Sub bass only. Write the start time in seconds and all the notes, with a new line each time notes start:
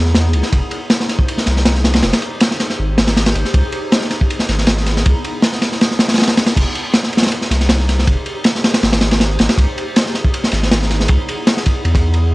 Already playing: E2
0.34 C#2
0.52 F1
1.47 C2
2.03 F1
2.79 G#1
3.35 G#1
3.54 C#2
4.49 G#1
5.06 C#2
6.56 F1
7.50 C2
8.07 F1
8.83 G#1
9.39 G#1
9.58 C#2
10.52 G#1
11.09 C#2
11.85 E2